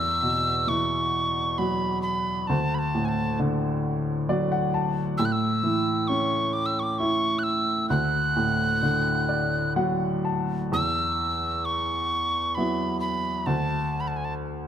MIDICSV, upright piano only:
0, 0, Header, 1, 2, 480
1, 0, Start_track
1, 0, Tempo, 904977
1, 1325, Time_signature, 3, 2, 24, 8
1, 4198, Tempo, 938967
1, 6118, Tempo, 890208
1, 7737, End_track
2, 0, Start_track
2, 0, Title_t, "Upright piano"
2, 0, Program_c, 0, 0
2, 0, Control_c, 0, 64, 127
2, 0, Note_on_c, 0, 40, 47
2, 119, Note_on_c, 0, 47, 35
2, 358, Note_on_c, 0, 52, 41
2, 842, Note_on_c, 0, 54, 41
2, 1066, Note_off_c, 0, 47, 0
2, 1301, Note_off_c, 0, 40, 0
2, 1301, Note_off_c, 0, 52, 0
2, 1308, Note_off_c, 0, 54, 0
2, 1323, Note_on_c, 0, 38, 51
2, 1331, Control_c, 0, 64, 0
2, 1426, Control_c, 0, 64, 127
2, 1563, Note_on_c, 0, 45, 38
2, 1801, Note_on_c, 0, 50, 46
2, 2276, Note_on_c, 0, 54, 46
2, 2277, Note_on_c, 0, 74, 58
2, 2387, Note_off_c, 0, 74, 0
2, 2396, Note_on_c, 0, 78, 51
2, 2494, Note_off_c, 0, 45, 0
2, 2506, Note_off_c, 0, 78, 0
2, 2515, Note_on_c, 0, 81, 52
2, 2729, Note_off_c, 0, 38, 0
2, 2729, Note_off_c, 0, 50, 0
2, 2734, Note_off_c, 0, 81, 0
2, 2735, Note_off_c, 0, 54, 0
2, 2754, Note_on_c, 0, 45, 56
2, 2758, Control_c, 0, 64, 0
2, 2839, Control_c, 0, 64, 127
2, 2988, Note_on_c, 0, 52, 42
2, 3232, Note_on_c, 0, 61, 44
2, 3713, Note_on_c, 0, 64, 44
2, 3934, Note_off_c, 0, 52, 0
2, 4178, Note_off_c, 0, 45, 0
2, 4178, Note_off_c, 0, 61, 0
2, 4183, Note_off_c, 0, 64, 0
2, 4191, Note_on_c, 0, 38, 55
2, 4205, Control_c, 0, 64, 0
2, 4284, Control_c, 0, 64, 127
2, 4428, Note_on_c, 0, 45, 40
2, 4665, Note_on_c, 0, 50, 42
2, 4900, Note_on_c, 0, 74, 45
2, 5131, Note_off_c, 0, 74, 0
2, 5142, Note_on_c, 0, 54, 44
2, 5143, Note_on_c, 0, 78, 50
2, 5376, Note_off_c, 0, 45, 0
2, 5376, Note_off_c, 0, 78, 0
2, 5390, Note_on_c, 0, 81, 44
2, 5617, Note_off_c, 0, 38, 0
2, 5619, Note_off_c, 0, 50, 0
2, 5619, Note_off_c, 0, 81, 0
2, 5621, Note_off_c, 0, 54, 0
2, 5633, Note_on_c, 0, 40, 46
2, 5648, Control_c, 0, 64, 0
2, 5728, Control_c, 0, 64, 127
2, 6605, Note_on_c, 0, 54, 33
2, 6605, Note_on_c, 0, 59, 31
2, 6608, Note_on_c, 0, 64, 39
2, 7060, Note_off_c, 0, 40, 0
2, 7070, Note_off_c, 0, 54, 0
2, 7070, Note_off_c, 0, 59, 0
2, 7071, Note_off_c, 0, 64, 0
2, 7086, Note_on_c, 0, 38, 51
2, 7093, Control_c, 0, 64, 0
2, 7178, Control_c, 0, 64, 127
2, 7737, Note_off_c, 0, 38, 0
2, 7737, End_track
0, 0, End_of_file